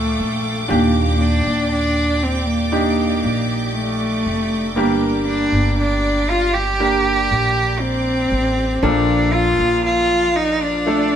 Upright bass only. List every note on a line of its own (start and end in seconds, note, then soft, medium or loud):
0.00 0.15 D2 medium
0.19 0.66 A#1 medium
0.70 1.42 D#2 loud
1.46 3.20 D#2 medium
3.24 4.22 A#1 medium
4.26 4.76 F1 medium
4.76 5.49 G1 loud
5.52 7.26 G1 medium
7.31 8.29 A#1 medium
8.31 8.79 A1 medium
8.83 9.55 A#1 loud
9.59 11.16 A#1 medium